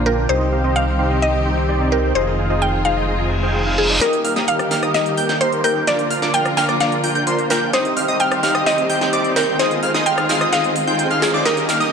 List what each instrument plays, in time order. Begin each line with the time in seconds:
Already playing: detuned saw bass A#1, string section D3 F3 A#3 F4
0.06 supersaw synth A#3 D4 F4 A#4 G5, synth pluck A#4
0.29 detuned saw bass C2, string section D#3 G3 C4 G4, supersaw synth C4 D#4 G4 C5 D#5, synth pluck C5
0.52 supersaw synth C4 D#4 G4 C5 F5
0.64 supersaw synth C4 D#4 G4 C5 D#5
0.76 supersaw synth C4 D#4 G4 C5 F5, synth pluck F5
0.99 supersaw synth C4 D#4 G4 C5 F5
1.11 supersaw synth C4 D#4 G4 C5 D#5
1.22 supersaw synth C4 D#4 G4 C5 D#5, synth pluck D#5
1.46 supersaw synth C4 D#4 G4 C5 G5
1.57 supersaw synth C4 D#4 G4 C5 G5
1.69 supersaw synth C4 D#4 G4 C5 D5
1.92 supersaw synth C4 D#4 G4 C5 G5, synth pluck A#4
2.15 detuned saw bass F1, string section G#3 F4, supersaw synth D#4 F4 G#4 C5 D#5, synth pluck C5
2.39 supersaw synth D#4 F4 G#4 C5 F5
2.50 supersaw synth D#4 F4 G#4 C5 D#5
2.62 supersaw synth D#4 F4 G#4 C5 F5, synth pluck G5
2.85 supersaw synth D#4 F4 G#4 C5 F5, synth pluck F5
2.97 supersaw synth D#4 F4 G#4 C5 D#5
3.08 supersaw synth D#4 F4 G#4 C5 D#5, reverse cymbal
3.43 supersaw synth D#4 F4 G#4 C5 G5
3.66 supersaw synth D#4 F4 G#4 C5 F5
3.78 synth pluck G#4
3.90 supersaw synth D#4 F4 G#4 C5 D5
4.01 detuned saw bass D#1, string section D#3 G3 A#3 G4, supersaw synth A#3 D#4 G4 A#4 D#5, synth pluck A#4, digital synth lead D#6, snare, closed hi-hat, riser
4.13 closed hi-hat
4.25 detuned saw bass D#1, supersaw synth A#3 D#4 G4 A#4 F5, digital synth lead F6, open hi-hat
4.36 detuned saw bass D#1, supersaw synth A#3 D#4 G4 A#4 D#5, digital synth lead D#6, snare, closed hi-hat
4.48 detuned saw bass D#1, supersaw synth A#3 D#4 G4 A#4 F5, synth pluck F5, digital synth lead F6, closed hi-hat
4.59 cross-stick, closed hi-hat
4.71 detuned saw bass D#1, supersaw synth A#3 D#4 G4 A#4 F5, digital synth lead F6, snare, open hi-hat
4.83 detuned saw bass D#1, supersaw synth A#3 D#4 G4 A#4 D#5, digital synth lead D#6, cross-stick, closed hi-hat
4.94 detuned saw bass D#1, supersaw synth A#3 D#4 G4 A#4 D#5, synth pluck D#5, digital synth lead D#6, snare, open hi-hat
5.06 closed hi-hat
5.17 detuned saw bass D#1, supersaw synth A#3 D#4 G4 A#4 G5, digital synth lead G6, open hi-hat
5.29 detuned saw bass D#1, supersaw synth A#3 D#4 G4 A#4 G5, digital synth lead G6, snare, closed hi-hat
5.41 detuned saw bass D#2, supersaw synth A#3 D#4 G4 A#4 C5, synth pluck C5, digital synth lead C6, closed hi-hat
5.52 closed hi-hat
5.64 detuned saw bass D#1, supersaw synth A#3 D#4 G4 A#4 G5, synth pluck A#4, digital synth lead G6, open hi-hat
5.87 detuned saw bass A#1, string section D3 F3 F4, supersaw synth A#3 D4 F4 A#4 D5, synth pluck D5, digital synth lead D6, snare, closed hi-hat
5.99 closed hi-hat
6.11 detuned saw bass A#1, supersaw synth A#3 D4 F4 A#4 F5, digital synth lead F6, open hi-hat
6.22 detuned saw bass A#1, supersaw synth A#3 D4 F4 A#4 D5, digital synth lead D6, snare, closed hi-hat
6.34 detuned saw bass A#1, supersaw synth A#3 D4 F4 A#4 F5, synth pluck G5, digital synth lead F6, closed hi-hat
6.45 cross-stick, closed hi-hat
6.57 detuned saw bass A#1, supersaw synth A#3 D4 F4 A#4 F5, synth pluck G5, digital synth lead F6, snare, open hi-hat
6.69 detuned saw bass A#1, supersaw synth A#3 D4 F4 A#4 D5, digital synth lead D6, cross-stick, closed hi-hat
6.80 detuned saw bass A#1, supersaw synth A#3 D4 F4 A#4 D5, synth pluck F5, digital synth lead D6, snare, closed hi-hat
6.92 closed hi-hat
7.04 detuned saw bass A#1, supersaw synth A#3 D4 F4 A#4 G5, digital synth lead G6, open hi-hat
7.15 detuned saw bass A#1, supersaw synth A#3 D4 F4 A#4 G5, digital synth lead G6, closed hi-hat
7.27 detuned saw bass A#1, supersaw synth A#3 D4 F4 A#4 C5, digital synth lead C6, closed hi-hat
7.39 closed hi-hat
7.50 detuned saw bass A#1, supersaw synth A#3 D4 F4 A#4 G5, synth pluck A#4, digital synth lead G6, snare, open hi-hat
7.73 detuned saw bass C2, string section D#3 G3 C4 G4, supersaw synth C4 D#4 G4 C5 D#5, synth pluck C5, digital synth lead D#6, snare, closed hi-hat
7.85 closed hi-hat
7.97 detuned saw bass C2, supersaw synth C4 D#4 G4 C5 F5, digital synth lead F6, open hi-hat
8.08 detuned saw bass C2, supersaw synth C4 D#4 G4 C5 D#5, digital synth lead D#6, closed hi-hat
8.20 detuned saw bass C2, supersaw synth C4 D#4 G4 C5 F5, synth pluck G5, digital synth lead F6, closed hi-hat
8.31 cross-stick, closed hi-hat
8.43 detuned saw bass C2, supersaw synth C4 D#4 G4 C5 F5, digital synth lead F6, snare, open hi-hat
8.55 detuned saw bass C2, supersaw synth C4 D#4 G4 C5 D#5, digital synth lead D#6, cross-stick, closed hi-hat
8.66 detuned saw bass C2, supersaw synth C4 D#4 G4 C5 D#5, synth pluck D#5, digital synth lead D#6, snare, open hi-hat
8.78 closed hi-hat
8.90 detuned saw bass C2, supersaw synth C4 D#4 G4 C5 G5, digital synth lead G6, open hi-hat
9.01 detuned saw bass C2, supersaw synth C4 D#4 G4 C5 G5, digital synth lead G6, snare, closed hi-hat
9.13 detuned saw bass C2, supersaw synth C4 D#4 G4 C5 D5, digital synth lead D6, closed hi-hat
9.25 closed hi-hat
9.36 detuned saw bass C2, supersaw synth C4 D#4 G4 C5 G5, synth pluck A#4, digital synth lead G6, snare, open hi-hat
9.59 detuned saw bass F1, string section G#3 F4, supersaw synth D#4 F4 G#4 C5 D#5, synth pluck C5, digital synth lead D#6, snare, closed hi-hat
9.71 closed hi-hat
9.83 detuned saw bass F1, supersaw synth D#4 F4 G#4 C5 F5, digital synth lead F6, open hi-hat
9.94 detuned saw bass F1, supersaw synth D#4 F4 G#4 C5 D#5, digital synth lead D#6, snare, closed hi-hat
10.06 detuned saw bass F1, supersaw synth D#4 F4 G#4 C5 F5, synth pluck G5, digital synth lead F6, closed hi-hat
10.18 cross-stick, closed hi-hat
10.29 detuned saw bass F1, supersaw synth D#4 F4 G#4 C5 F5, digital synth lead F6, snare, open hi-hat
10.41 detuned saw bass F1, supersaw synth D#4 F4 G#4 C5 D#5, digital synth lead D#6, cross-stick, closed hi-hat
10.52 detuned saw bass F1, supersaw synth D#4 F4 G#4 C5 D#5, synth pluck F5, digital synth lead D#6, snare, closed hi-hat
10.64 closed hi-hat
10.76 open hi-hat
10.87 detuned saw bass F1, supersaw synth D#4 F4 G#4 C5 G5, digital synth lead G6, closed hi-hat
10.99 closed hi-hat
11.11 detuned saw bass F1, supersaw synth D#4 F4 G#4 C5 F5, digital synth lead F6, closed hi-hat
11.22 synth pluck G#4, snare, open hi-hat
11.34 detuned saw bass F2, supersaw synth D#4 F4 G#4 C5 D5, digital synth lead D6
11.45 detuned saw bass D#1, string section G3 A#3 G4, supersaw synth A#3 D#4 G4 A#4 D#5, synth pluck A#4, digital synth lead D#6, snare, closed hi-hat, shaker
11.57 closed hi-hat, shaker
11.69 detuned saw bass D#1, supersaw synth A#3 D#4 G4 A#4 F5, digital synth lead F6, snare, open hi-hat, shaker
11.80 detuned saw bass D#1, supersaw synth A#3 D#4 G4 A#4 D#5, digital synth lead D#6, closed hi-hat, shaker